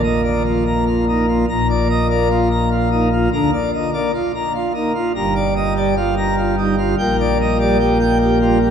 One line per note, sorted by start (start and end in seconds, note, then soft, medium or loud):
0.00 1.45 A#1 medium
0.00 1.45 A#2 medium
0.00 0.21 D#5 medium
0.24 0.43 A#3 medium
0.24 0.42 D5 medium
0.46 0.64 F4 medium
0.66 0.84 A#5 medium
0.87 1.05 F4 medium
1.08 1.26 A#3 medium
1.08 1.26 D#4 medium
1.29 1.46 F4 medium
1.49 3.28 A#1 medium
1.49 3.28 A#2 medium
1.49 1.67 A#5 loud
1.70 1.88 D5 medium
1.90 2.07 D#5 medium
2.10 2.28 A#3 medium
2.10 2.28 D5 medium
2.31 2.49 F4 medium
2.51 2.69 A#5 medium
2.71 2.89 F4 medium
2.91 3.09 A#3 medium
2.91 3.08 D#4 medium
3.13 3.30 F4 medium
3.33 3.50 D2 medium
3.33 3.50 D3 medium
3.33 3.51 A#5 loud
3.53 3.71 D5 medium
3.73 3.90 D#5 medium
3.93 4.11 A#3 medium
3.93 4.11 D5 medium
4.14 4.32 F4 medium
4.35 4.52 A#5 medium
4.55 4.73 F4 medium
4.74 4.93 A#3 medium
4.74 4.92 D#4 medium
4.95 5.12 F4 medium
5.15 6.94 G1 medium
5.15 6.94 G2 medium
5.15 5.34 A#5 loud
5.36 5.54 D5 medium
5.56 5.73 D#5 medium
5.76 5.95 G3 medium
5.76 5.95 D5 medium
5.97 6.15 F4 medium
6.17 6.35 A#5 medium
6.37 6.55 F4 medium
6.58 6.76 G3 medium
6.58 6.75 D#4 medium
6.78 6.95 F4 medium
6.98 8.71 A#1 medium
6.98 8.71 A#2 medium
6.98 7.17 G5 loud
7.20 7.37 D5 medium
7.41 7.57 D#5 medium
7.59 7.77 G3 medium
7.59 7.78 D5 medium
7.80 7.98 G4 medium
8.00 8.18 G5 medium
8.21 8.38 G4 medium
8.41 8.59 G3 medium
8.41 8.58 F4 medium
8.62 8.71 G4 medium